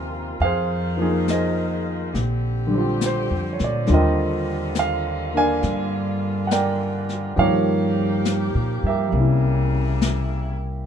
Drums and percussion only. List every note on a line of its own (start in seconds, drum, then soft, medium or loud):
0.41 brush sweep soft
1.28 snare soft
1.28 hi-hat pedal medium
2.15 brush sweep soft
2.15 snare soft
3.01 snare soft
3.01 hi-hat pedal soft
3.59 snare soft
3.87 brush sweep soft
3.87 snare soft
4.75 snare soft
4.75 hi-hat pedal soft
5.62 brush sweep soft
5.62 snare soft
6.51 snare soft
6.51 hi-hat pedal medium
7.09 snare soft
7.39 brush sweep soft
8.25 snare soft
8.25 hi-hat pedal soft
9.13 brush sweep soft
10.02 snare soft
10.02 hi-hat pedal soft